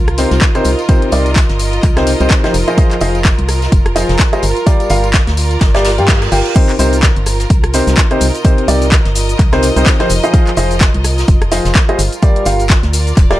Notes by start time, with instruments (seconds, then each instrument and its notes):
Already playing: fm bass C2, string section F4 A#4
0.08 cross-stick, closed hi-hat
0.18 upright piano C3 D#4 G4 A#4 C5, snare, closed hi-hat, open hi-hat, tambourine
0.31 fm bass C2, snare, closed hi-hat, tambourine
0.38 string section D#5, kick, snare, clap, closed hi-hat, tambourine
0.55 upright piano C3 D#4 G4 A#4 C5, cross-stick, closed hi-hat, tambourine
0.64 fm bass C2, closed hi-hat, open hi-hat, tambourine
0.79 closed hi-hat, tambourine
0.89 upright piano C3 D#4 G4 A#4 C5, kick, closed hi-hat, tambourine
1.02 closed hi-hat
1.12 fm bass C2, upright piano C3 D#4 G4 A#4 D5, closed hi-hat, open hi-hat, tambourine
1.26 closed hi-hat, tambourine
1.36 kick, snare, clap, closed hi-hat, tambourine
1.50 fm bass G1, snare, closed hi-hat
1.59 closed hi-hat, open hi-hat, tambourine
1.73 closed hi-hat, tambourine
1.83 fm bass C2, kick, clap, closed hi-hat, tambourine
1.97 upright piano C3 D#4 G4 A#4 C5, cross-stick, snare, closed hi-hat
2.07 closed hi-hat, open hi-hat, tambourine
2.20 fm bass C2, upright piano C3 D#4 G4 A#4 C5, closed hi-hat, tambourine
2.30 kick, snare, clap, closed hi-hat, tambourine
2.44 upright piano F3 D#4 G4 A#4 C5, cross-stick, snare, closed hi-hat, tambourine
2.54 fm bass F1, closed hi-hat, open hi-hat, tambourine
2.67 upright piano F3 F4 G#4 C5 D#5, closed hi-hat, tambourine
2.78 upright piano F3 F4 G#4 C5 D#5, kick, closed hi-hat, tambourine
2.91 clap, closed hi-hat
3.01 fm bass F1, upright piano F3 F4 G#4 C5 D#5, closed hi-hat, open hi-hat, tambourine
3.15 closed hi-hat, tambourine
3.25 kick, snare, clap, closed hi-hat, tambourine
3.39 fm bass C2, closed hi-hat
3.49 cross-stick, closed hi-hat, open hi-hat, tambourine
3.62 snare, closed hi-hat, tambourine
3.72 fm bass F1, kick, closed hi-hat, tambourine
3.86 cross-stick, closed hi-hat
3.96 upright piano F3 F4 G#4 C5 D#5, snare, closed hi-hat, open hi-hat, tambourine
4.09 fm bass F1, snare, closed hi-hat, tambourine
4.19 kick, snare, clap, closed hi-hat, tambourine
4.33 upright piano G3 F4 G#4 C5 D#5, cross-stick, closed hi-hat, tambourine
4.42 fm bass G1, closed hi-hat, open hi-hat, tambourine
4.57 closed hi-hat, tambourine
4.66 upright piano G3 F4 G4 A#4 D5, kick, closed hi-hat, tambourine
4.80 closed hi-hat, tambourine
4.90 fm bass G1, upright piano G3 F4 G4 A#4 F5, closed hi-hat, open hi-hat, tambourine
5.04 closed hi-hat, tambourine
5.14 kick, snare, clap, closed hi-hat, tambourine
5.27 fm bass D2, snare, closed hi-hat, tambourine
5.37 string section D5, closed hi-hat, open hi-hat, tambourine
5.50 closed hi-hat, tambourine
5.61 fm bass G1, kick, snare, clap, closed hi-hat, tambourine, reverse cymbal
5.75 upright piano G3 F4 G4 A#4 D5, cross-stick, snare, closed hi-hat
5.84 snare, closed hi-hat, open hi-hat, tambourine
5.98 fm bass G2, upright piano G3 F4 G4 A#4 G5, closed hi-hat, tambourine
6.08 kick, snare, clap, closed hi-hat, tambourine
6.22 cross-stick, snare, closed hi-hat, tambourine
6.32 fm bass G1, upright piano F4 G4 A#4 G5, closed hi-hat, open hi-hat, tambourine
6.46 closed hi-hat, tambourine
6.56 upright piano C3 D#4 G4 A#4 C5, kick, closed hi-hat, crash, shaker
6.69 clap, closed hi-hat
6.79 fm bass C2, upright piano C3 D#4 G4 A#4 C5, closed hi-hat, open hi-hat, tambourine, shaker
6.93 closed hi-hat, tambourine, shaker
7.02 kick, snare, clap, closed hi-hat, shaker
7.16 fm bass G1, closed hi-hat
7.26 cross-stick, closed hi-hat, open hi-hat, tambourine, shaker
7.40 snare, closed hi-hat, tambourine, shaker
7.50 fm bass C2, kick, closed hi-hat, tambourine, shaker
7.64 cross-stick, closed hi-hat
7.73 upright piano C3 D#4 G4 A#4 C5, snare, closed hi-hat, open hi-hat, tambourine, shaker
7.87 fm bass C2, snare, closed hi-hat, tambourine, shaker
7.97 string section D#5, kick, snare, clap, closed hi-hat, tambourine, shaker
8.11 upright piano C3 D#4 G4 A#4 C5, cross-stick, closed hi-hat
8.20 fm bass C2, closed hi-hat, open hi-hat, tambourine, shaker
8.35 closed hi-hat, tambourine, shaker
8.45 upright piano C3 D#4 G4 A#4 C5, kick, closed hi-hat, tambourine, shaker
8.58 closed hi-hat
8.68 fm bass C2, upright piano C3 D#4 G4 A#4 D5, closed hi-hat, open hi-hat, tambourine, shaker
8.82 closed hi-hat, tambourine, shaker
8.92 kick, snare, clap, closed hi-hat, shaker
9.05 fm bass G1, snare, closed hi-hat
9.15 closed hi-hat, open hi-hat, tambourine, shaker
9.29 closed hi-hat, tambourine, shaker
9.39 fm bass C2, kick, clap, closed hi-hat, tambourine, shaker
9.53 upright piano C3 D#4 G4 A#4 C5, cross-stick, snare, closed hi-hat
9.62 closed hi-hat, open hi-hat, tambourine, shaker
9.76 fm bass C2, upright piano C3 D#4 G4 A#4 C5, closed hi-hat, tambourine, shaker
9.86 kick, snare, clap, closed hi-hat, shaker
10.00 upright piano F3 D#4 G4 A#4 C5, cross-stick, snare, closed hi-hat
10.09 fm bass F1, closed hi-hat, open hi-hat, tambourine, shaker
10.23 upright piano F3 F4 G#4 C5 D#5, closed hi-hat, tambourine, shaker
10.34 upright piano F3 F4 G#4 C5 D#5, kick, closed hi-hat, tambourine, shaker
10.47 clap, closed hi-hat
10.57 fm bass F1, upright piano F3 F4 G#4 C5 D#5, closed hi-hat, open hi-hat, tambourine, shaker
10.71 closed hi-hat, tambourine, shaker
10.81 kick, snare, clap, closed hi-hat, shaker
10.94 fm bass C2, closed hi-hat
11.04 cross-stick, closed hi-hat, open hi-hat, tambourine, shaker
11.18 snare, closed hi-hat, tambourine, shaker
11.28 fm bass F1, kick, closed hi-hat, tambourine, shaker
11.42 cross-stick, closed hi-hat
11.52 upright piano F3 F4 G#4 C5 D#5, snare, closed hi-hat, open hi-hat, tambourine, shaker
11.65 fm bass F1, snare, closed hi-hat, tambourine, shaker
11.75 kick, snare, clap, closed hi-hat, tambourine, shaker
11.89 upright piano G3 F4 G#4 C5 D#5, cross-stick, closed hi-hat
11.99 fm bass G1, string section F4, closed hi-hat, open hi-hat, tambourine, shaker
12.12 string section A#4, closed hi-hat, tambourine, shaker
12.22 upright piano G3 F4 G4 A#4 D5, kick, closed hi-hat, tambourine, shaker
12.36 closed hi-hat
12.45 fm bass G1, upright piano G3 F4 G4 A#4 F5, closed hi-hat, open hi-hat, tambourine, shaker
12.59 closed hi-hat, tambourine, shaker
12.70 kick, snare, clap, closed hi-hat, shaker
12.83 fm bass D2, snare, closed hi-hat
12.93 string section D5, closed hi-hat, open hi-hat, tambourine, shaker
13.07 closed hi-hat, tambourine, shaker
13.17 fm bass D1, kick, clap, closed hi-hat, tambourine, shaker
13.31 upright piano G3 F4 G4 A#4 D5, cross-stick, snare, closed hi-hat